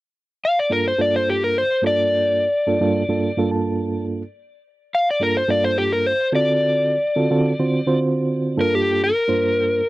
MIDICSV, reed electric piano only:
0, 0, Header, 1, 2, 480
1, 0, Start_track
1, 0, Key_signature, -2, "minor"
1, 0, Tempo, 562324
1, 1559, Time_signature, 4, 2, 24, 8
1, 8445, End_track
2, 0, Start_track
2, 0, Title_t, "Reed electric piano"
2, 0, Program_c, 0, 4
2, 594, Note_on_c, 0, 58, 54
2, 595, Note_on_c, 0, 43, 62
2, 598, Note_on_c, 0, 65, 59
2, 599, Note_on_c, 0, 62, 53
2, 603, Note_on_c, 0, 69, 59
2, 776, Note_off_c, 0, 58, 0
2, 777, Note_off_c, 0, 43, 0
2, 779, Note_off_c, 0, 62, 0
2, 779, Note_off_c, 0, 65, 0
2, 781, Note_off_c, 0, 69, 0
2, 838, Note_on_c, 0, 43, 57
2, 838, Note_on_c, 0, 58, 59
2, 838, Note_on_c, 0, 62, 58
2, 840, Note_on_c, 0, 69, 66
2, 842, Note_on_c, 0, 65, 63
2, 1376, Note_off_c, 0, 43, 0
2, 1376, Note_off_c, 0, 58, 0
2, 1376, Note_off_c, 0, 62, 0
2, 1377, Note_off_c, 0, 69, 0
2, 1378, Note_off_c, 0, 65, 0
2, 1558, Note_on_c, 0, 43, 67
2, 1560, Note_on_c, 0, 58, 63
2, 1564, Note_on_c, 0, 62, 57
2, 1564, Note_on_c, 0, 65, 61
2, 1568, Note_on_c, 0, 69, 73
2, 2096, Note_off_c, 0, 43, 0
2, 2097, Note_off_c, 0, 58, 0
2, 2099, Note_off_c, 0, 62, 0
2, 2099, Note_off_c, 0, 65, 0
2, 2101, Note_off_c, 0, 69, 0
2, 2277, Note_on_c, 0, 43, 71
2, 2279, Note_on_c, 0, 62, 67
2, 2280, Note_on_c, 0, 58, 61
2, 2281, Note_on_c, 0, 69, 80
2, 2284, Note_on_c, 0, 65, 73
2, 2370, Note_off_c, 0, 43, 0
2, 2371, Note_off_c, 0, 58, 0
2, 2371, Note_off_c, 0, 62, 0
2, 2372, Note_off_c, 0, 69, 0
2, 2373, Note_off_c, 0, 65, 0
2, 2396, Note_on_c, 0, 58, 78
2, 2398, Note_on_c, 0, 43, 86
2, 2399, Note_on_c, 0, 62, 75
2, 2400, Note_on_c, 0, 65, 76
2, 2401, Note_on_c, 0, 69, 87
2, 2576, Note_off_c, 0, 58, 0
2, 2577, Note_off_c, 0, 43, 0
2, 2578, Note_off_c, 0, 62, 0
2, 2578, Note_off_c, 0, 65, 0
2, 2579, Note_off_c, 0, 69, 0
2, 2634, Note_on_c, 0, 43, 77
2, 2634, Note_on_c, 0, 62, 66
2, 2637, Note_on_c, 0, 58, 66
2, 2637, Note_on_c, 0, 65, 69
2, 2642, Note_on_c, 0, 69, 81
2, 2815, Note_off_c, 0, 43, 0
2, 2816, Note_off_c, 0, 62, 0
2, 2817, Note_off_c, 0, 58, 0
2, 2817, Note_off_c, 0, 65, 0
2, 2819, Note_off_c, 0, 69, 0
2, 2880, Note_on_c, 0, 43, 87
2, 2884, Note_on_c, 0, 58, 81
2, 2887, Note_on_c, 0, 62, 77
2, 2887, Note_on_c, 0, 65, 85
2, 2891, Note_on_c, 0, 69, 88
2, 3000, Note_on_c, 0, 81, 60
2, 3446, Note_off_c, 0, 81, 0
2, 3596, Note_off_c, 0, 43, 0
2, 3598, Note_off_c, 0, 58, 0
2, 3599, Note_off_c, 0, 62, 0
2, 3599, Note_off_c, 0, 65, 0
2, 3601, Note_off_c, 0, 69, 0
2, 4438, Note_on_c, 0, 43, 62
2, 4441, Note_on_c, 0, 58, 55
2, 4442, Note_on_c, 0, 62, 59
2, 4446, Note_on_c, 0, 69, 65
2, 4448, Note_on_c, 0, 65, 61
2, 4619, Note_off_c, 0, 43, 0
2, 4620, Note_off_c, 0, 58, 0
2, 4621, Note_off_c, 0, 62, 0
2, 4623, Note_off_c, 0, 69, 0
2, 4624, Note_off_c, 0, 65, 0
2, 4679, Note_on_c, 0, 43, 71
2, 4680, Note_on_c, 0, 69, 65
2, 4681, Note_on_c, 0, 62, 63
2, 4682, Note_on_c, 0, 58, 61
2, 4683, Note_on_c, 0, 65, 59
2, 5217, Note_off_c, 0, 43, 0
2, 5217, Note_off_c, 0, 69, 0
2, 5218, Note_off_c, 0, 58, 0
2, 5218, Note_off_c, 0, 62, 0
2, 5219, Note_off_c, 0, 65, 0
2, 5397, Note_on_c, 0, 50, 62
2, 5399, Note_on_c, 0, 60, 66
2, 5399, Note_on_c, 0, 69, 74
2, 5400, Note_on_c, 0, 65, 63
2, 5400, Note_on_c, 0, 66, 64
2, 5936, Note_off_c, 0, 50, 0
2, 5937, Note_off_c, 0, 60, 0
2, 5937, Note_off_c, 0, 69, 0
2, 5938, Note_off_c, 0, 65, 0
2, 5938, Note_off_c, 0, 66, 0
2, 6110, Note_on_c, 0, 60, 68
2, 6113, Note_on_c, 0, 50, 70
2, 6115, Note_on_c, 0, 65, 72
2, 6115, Note_on_c, 0, 69, 91
2, 6116, Note_on_c, 0, 66, 68
2, 6206, Note_off_c, 0, 60, 0
2, 6208, Note_off_c, 0, 50, 0
2, 6209, Note_off_c, 0, 65, 0
2, 6209, Note_off_c, 0, 69, 0
2, 6210, Note_off_c, 0, 66, 0
2, 6235, Note_on_c, 0, 50, 83
2, 6235, Note_on_c, 0, 60, 76
2, 6235, Note_on_c, 0, 65, 79
2, 6238, Note_on_c, 0, 66, 82
2, 6242, Note_on_c, 0, 69, 94
2, 6416, Note_off_c, 0, 50, 0
2, 6416, Note_off_c, 0, 60, 0
2, 6416, Note_off_c, 0, 65, 0
2, 6418, Note_off_c, 0, 66, 0
2, 6420, Note_off_c, 0, 69, 0
2, 6483, Note_on_c, 0, 50, 70
2, 6483, Note_on_c, 0, 60, 71
2, 6484, Note_on_c, 0, 65, 61
2, 6484, Note_on_c, 0, 72, 82
2, 6486, Note_on_c, 0, 66, 64
2, 6660, Note_off_c, 0, 50, 0
2, 6660, Note_off_c, 0, 60, 0
2, 6661, Note_off_c, 0, 65, 0
2, 6661, Note_off_c, 0, 72, 0
2, 6662, Note_off_c, 0, 66, 0
2, 6715, Note_on_c, 0, 50, 76
2, 6718, Note_on_c, 0, 60, 78
2, 6719, Note_on_c, 0, 65, 73
2, 6719, Note_on_c, 0, 66, 73
2, 6721, Note_on_c, 0, 72, 96
2, 7312, Note_off_c, 0, 65, 0
2, 7315, Note_on_c, 0, 58, 66
2, 7316, Note_off_c, 0, 50, 0
2, 7316, Note_on_c, 0, 43, 73
2, 7317, Note_off_c, 0, 60, 0
2, 7318, Note_off_c, 0, 66, 0
2, 7318, Note_on_c, 0, 62, 74
2, 7319, Note_off_c, 0, 72, 0
2, 7320, Note_on_c, 0, 69, 90
2, 7322, Note_on_c, 0, 65, 65
2, 7765, Note_off_c, 0, 58, 0
2, 7766, Note_off_c, 0, 43, 0
2, 7767, Note_off_c, 0, 62, 0
2, 7768, Note_off_c, 0, 65, 0
2, 7768, Note_off_c, 0, 69, 0
2, 7921, Note_on_c, 0, 62, 60
2, 7924, Note_on_c, 0, 43, 65
2, 7924, Note_on_c, 0, 58, 53
2, 7925, Note_on_c, 0, 65, 53
2, 7928, Note_on_c, 0, 72, 71
2, 8368, Note_off_c, 0, 62, 0
2, 8369, Note_off_c, 0, 43, 0
2, 8369, Note_off_c, 0, 58, 0
2, 8370, Note_off_c, 0, 65, 0
2, 8371, Note_off_c, 0, 72, 0
2, 8445, End_track
0, 0, End_of_file